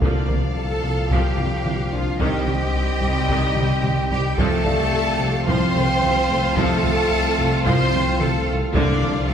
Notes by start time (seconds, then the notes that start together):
0.01 C2 A#2 D3 F3 A#3 D4 A4 D5 F5, taiko
0.28 C2 A#3 A#4, taiko mid
0.56 C2 A4 A5
0.83 C2 C3 A#3 F4
1.10 C2 F3 G3 A#3 G4 G5, taiko
1.37 C2 C3 A#3 F4, taiko mid
1.65 C2 C3 D4 F4, taiko mid
1.92 C2 F3 A#3 D4 F4 F5
2.19 C2 C3 D#3 G3 C4 G4 D#5 G5, taiko
2.47 C2 G3 C4, taiko mid
2.74 C2
3.01 C2 C3 G3
3.28 C2 C3 D#3, taiko
3.55 C2 C3 G3, taiko mid
3.83 C2 C3 G3 C4, taiko mid
4.10 C2 D#3 G3 G4 G5
4.38 C2 F3 A3 C4 A4 F5 A5, taiko
4.65 C2 A3 F4 D5, taiko mid
4.92 C2
5.20 C2 C3 A3 C4
5.47 C2 F3 C4 F4 C5 C6, taiko
5.74 C2 C3 A3 C4, taiko mid
6.01 C2 C3 C4, taiko mid
6.29 C2 A3
6.56 C2 F3 A3 A4 A5, taiko
6.84 C2 A3 F4, taiko mid
7.11 C2
7.38 C2 C3 A3 C4
7.65 C2 F3 C4 F4 C5 F5 C6, taiko
7.92 C2 C3 A3 C4, taiko mid
8.20 C2 C3 A3 C4 A4 A5, taiko mid
8.47 C2 A3
8.74 C2 A#2 D3 F3 A#3 D4 F4 D5 F5, taiko
9.02 C2 F3 A#4, taiko mid
9.29 C2 A3 A4 A5